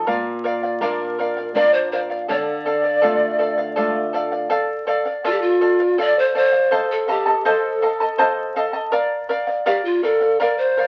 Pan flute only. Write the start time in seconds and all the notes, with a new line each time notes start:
0.82 A#4
1.54 D5
1.74 C5
1.92 C5
2.30 D5
5.26 F4
5.31 G4
5.41 F4
6.00 D5
6.19 C5
6.37 C5
6.91 A4
7.10 G4
7.47 A4
9.67 G4
9.85 F4
10.03 A4
10.40 A#4
10.58 C5